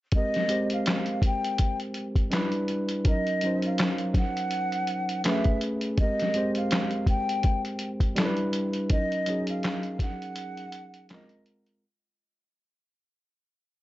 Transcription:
0.12 tine electric piano G#3 C4, flute D#5, kick, closed hi-hat
0.16 tine electric piano G4 A#4
0.34 snare, closed hi-hat
0.48 tine electric piano G#3 C4 G4 C5, closed hi-hat
0.70 flute F5, closed hi-hat
0.86 snare, clap, closed hi-hat
1.06 closed hi-hat
1.22 flute G5, kick, closed hi-hat
1.44 closed hi-hat
1.58 kick, closed hi-hat
1.80 closed hi-hat
1.94 closed hi-hat
2.16 kick, closed hi-hat
2.31 tine electric piano G3 D4 E4 B4, snare, clap, closed hi-hat
2.52 closed hi-hat
2.68 closed hi-hat
2.89 closed hi-hat
3.05 tine electric piano F#3 C#4 D#4 A#4, flute D#5, kick, closed hi-hat
3.27 closed hi-hat
3.41 tine electric piano F#3 C#4, closed hi-hat
3.45 tine electric piano D#4 C5
3.62 flute F5, closed hi-hat
3.78 snare, clap, closed hi-hat
3.98 closed hi-hat
4.14 flute F#5, kick, snare, closed hi-hat
4.37 closed hi-hat
4.51 closed hi-hat
4.72 closed hi-hat
4.87 closed hi-hat
5.09 closed hi-hat
5.24 tine electric piano A3 C#4 G#4 B4, flute E5, snare, clap, closed hi-hat
5.44 kick, closed hi-hat
5.61 closed hi-hat
5.81 closed hi-hat
5.98 tine electric piano G#3 C4, flute D#5, kick, closed hi-hat
6.02 tine electric piano G4 A#4
6.20 snare, closed hi-hat
6.34 tine electric piano G#3 C4 G4 C5, closed hi-hat
6.55 flute F5, closed hi-hat
6.71 snare, clap, closed hi-hat
6.91 closed hi-hat
7.07 flute G5, kick, closed hi-hat
7.29 closed hi-hat
7.43 kick, closed hi-hat
7.65 closed hi-hat
7.79 closed hi-hat
8.00 kick, closed hi-hat
8.15 tine electric piano G3 D4 E4 A4, snare, clap, closed hi-hat
8.25 tine electric piano B4
8.37 closed hi-hat
8.53 closed hi-hat
8.73 closed hi-hat
8.90 tine electric piano F#3 C#4 D#4, flute D#5, kick, closed hi-hat
8.94 tine electric piano A#4
9.12 closed hi-hat
9.26 tine electric piano F#3 C#4 D#4 G#4, closed hi-hat
9.47 flute F5, closed hi-hat
9.63 snare, clap, closed hi-hat
9.83 closed hi-hat
9.99 flute F#5, kick, snare, closed hi-hat
10.22 closed hi-hat
10.36 closed hi-hat
10.57 closed hi-hat
10.72 closed hi-hat
10.94 closed hi-hat
11.09 tine electric piano G#3 C4 F4, flute D#5, snare, clap, closed hi-hat
11.14 tine electric piano A#4
11.29 closed hi-hat
11.46 closed hi-hat
11.66 closed hi-hat

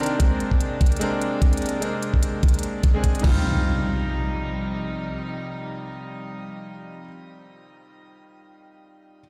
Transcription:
Already playing: string section C3 D#3 A#3 D4, grand piano C5
0.00 grand piano D#3 C4 D4 A#4, closed hi-hat
0.06 closed hi-hat
0.18 grand piano G#3 C4, string section G#3, kick, closed hi-hat
0.22 grand piano A#4
0.40 closed hi-hat
0.51 kick
0.61 closed hi-hat
0.81 kick, closed hi-hat
0.86 closed hi-hat
0.92 closed hi-hat
0.96 grand piano G#3, closed hi-hat
1.01 grand piano C4 D4 A#4, closed hi-hat
1.22 closed hi-hat
1.42 kick, closed hi-hat
1.53 closed hi-hat
1.57 closed hi-hat
1.62 closed hi-hat
1.66 closed hi-hat
1.69 closed hi-hat
1.80 grand piano G#3 C4 D4, closed hi-hat
1.84 grand piano A#4
2.02 closed hi-hat
2.14 kick
2.23 closed hi-hat
2.43 kick, closed hi-hat
2.48 closed hi-hat
2.54 closed hi-hat
2.59 closed hi-hat
2.63 closed hi-hat
2.83 kick, closed hi-hat
2.94 grand piano G#3 C4 D4 G#4
3.04 kick, closed hi-hat
3.15 closed hi-hat
3.19 grand piano D#3 G3, closed hi-hat
3.24 string section C3 F3 G3 D#4, grand piano C4 F4, kick, crash, impact

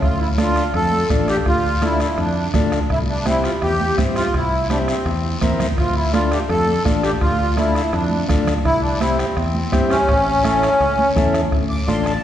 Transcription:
0.02 fingered electric bass D2, accordion F4, bombo low, bombo rim, long guiro
0.20 accordion E4
0.38 transistor combo organ D4 F4 A4, accordion F4, bombo rim, high conga, short guiro
0.56 bombo rim, short guiro
0.74 fingered electric bass F2, accordion A4, bombo rim, long guiro
0.92 high conga
1.10 fingered electric bass A1, transistor combo organ D4 F4 A4, bombo low, bombo rim, high conga, short guiro
1.28 accordion G4, bombo rim, short guiro
1.45 fingered electric bass D2, accordion F4, bombo low, bombo rim, long guiro
1.82 transistor combo organ D4 F4 A4, accordion E4, bombo rim, high conga, short guiro
2.00 accordion E4, bombo rim, short guiro
2.18 fingered electric bass F2, accordion D4, bombo rim, long guiro
2.54 fingered electric bass D2, transistor combo organ D4 F4 A4, bombo low, bombo rim, high conga, low conga, short guiro
2.72 bombo rim, short guiro
2.90 fingered electric bass C2, accordion E4, bombo low, bombo rim, long guiro
3.09 accordion D4
3.25 transistor combo organ C4 E4 G4, accordion E4, bombo rim, high conga, short guiro
3.44 accordion F4, bombo rim, short guiro
3.62 fingered electric bass E2, accordion G4, bombo rim, long guiro
3.80 high conga
3.97 fingered electric bass G2, transistor combo organ C4 E4 G4, bombo low, bombo rim, high conga, short guiro
4.16 accordion F4, bombo rim, short guiro
4.34 fingered electric bass C2, accordion E4, bombo low, bombo rim, long guiro
4.70 transistor combo organ C4 E4 G4, accordion D4, bombo rim, high conga, short guiro
4.88 accordion C4, bombo rim, short guiro
5.06 fingered electric bass E2, bombo rim, long guiro
5.41 fingered electric bass E2, transistor combo organ C4 E4 A#4, bombo low, bombo rim, high conga, low conga, short guiro
5.60 fingered electric bass D2, bombo rim, low conga, short guiro
5.78 fingered electric bass D2, accordion F4, bombo low, bombo rim, long guiro
5.95 accordion E4
6.13 transistor combo organ D4 F4 A4, accordion F4, bombo rim, high conga, short guiro
6.32 accordion G4, bombo rim, short guiro
6.49 fingered electric bass F2, accordion A4, bombo rim, long guiro
6.68 high conga
6.85 fingered electric bass A1, transistor combo organ D4 F4 A4, bombo low, bombo rim, high conga, short guiro
7.03 accordion G4, bombo rim, short guiro
7.21 fingered electric bass D2, accordion F4, bombo low, bombo rim, long guiro
7.56 transistor combo organ D4 F4 A4, accordion E4, bombo rim, high conga, short guiro
7.75 bombo rim, short guiro
7.93 fingered electric bass F2, accordion D4, bombo rim, long guiro
8.11 high conga
8.28 fingered electric bass D2, transistor combo organ D4 F4 A4, bombo low, bombo rim, high conga, low conga, short guiro
8.47 bombo rim, low conga, short guiro
8.65 fingered electric bass C2, accordion E4, bombo low, bombo rim, long guiro
8.82 accordion D4
9.00 transistor combo organ C4 E4 G4, accordion E4, bombo rim, high conga, short guiro
9.17 accordion C4, bombo rim, short guiro
9.37 fingered electric bass E2, bombo rim, long guiro
9.54 high conga
9.72 fingered electric bass G2, transistor combo organ C4 E4 G4, bombo low, bombo rim, high conga, short guiro
9.89 accordion C#4, bombo rim, short guiro
10.09 fingered electric bass A1, bombo low, bombo rim, long guiro
10.43 transistor combo organ C#4 E4 A4, bombo rim, high conga, short guiro
10.63 bombo rim, short guiro
10.80 fingered electric bass C#2, bombo rim, long guiro
10.99 high conga
11.15 fingered electric bass E2, transistor combo organ C#4 E4 A4, bombo low, bombo rim, high conga, low conga, short guiro
11.34 bombo rim, short guiro
11.52 fingered electric bass D2, bombo low, bombo rim, long guiro
11.70 accordion D6
11.87 fingered electric bass A1, transistor combo organ D4 F4 A4, accordion C6, bombo rim, high conga, short guiro
12.03 accordion G#5, bombo rim, short guiro
12.07 accordion A5

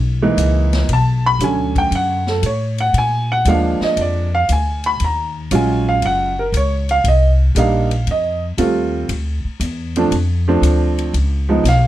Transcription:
Already playing: upright bass B1
0.22 grand piano E3 G#3 A#3 D#4
0.37 upright bass C#2, hi-hat pedal, ride
0.73 snare, ride
0.89 upright bass B1, ride
0.93 grand piano A5
1.26 grand piano B5
1.39 upright bass D2, grand piano D3 F#3 A3 C#4, hi-hat pedal, ride
1.44 grand piano G#5
1.76 grand piano G5, kick, ride
1.91 upright bass F#2, ride
1.95 grand piano F#5
2.27 grand piano A4, snare
2.42 upright bass A2, grand piano C#5, hi-hat pedal, ride
2.78 grand piano F#5, ride
2.93 upright bass A#2, ride
2.98 grand piano G#5
3.32 grand piano F#5
3.45 upright bass D#2, grand piano F3 G#3 A#3 D4 F5, hi-hat pedal, ride
3.80 grand piano D#5, muted upright bass stroke, snare
3.97 upright bass F2, ride
4.01 grand piano D5
4.35 grand piano F5
4.49 upright bass D2, grand piano G#5, hi-hat pedal, ride
4.84 grand piano B5, ride
5.00 upright bass D#2, ride
5.04 grand piano A#5
5.51 upright bass A#1, grand piano F#3 G#3 C#4 F4, hi-hat pedal, ride
5.55 grand piano G#5
5.89 grand piano F5
6.02 upright bass F#1, grand piano F#5, ride
6.39 grand piano A#4
6.52 upright bass C#2, hi-hat pedal, ride
6.57 grand piano C#5
6.89 grand piano F5, ride
7.04 upright bass C2, ride
7.08 grand piano D#5
7.55 upright bass A#1, grand piano G3 A#3 D4 D#4, hi-hat pedal, ride
7.59 grand piano F5
7.91 ride
8.07 upright bass F2, ride
8.11 grand piano D#5
8.58 upright bass D#2, grand piano G3 A3 C4 F4, hi-hat pedal, ride
9.09 upright bass D2, ride
9.44 muted upright bass stroke
9.60 upright bass E2, hi-hat pedal, ride
9.96 grand piano F3 A3 C4 D4, ride
10.11 upright bass F2, ride
10.48 grand piano F3 A3 C4 D4
10.62 upright bass D2, hi-hat pedal, ride
10.98 ride
11.13 upright bass C#2, ride
11.49 grand piano F3 G#3 B3 D#4
11.64 upright bass B1, snare, hi-hat pedal, ride
11.69 grand piano F5

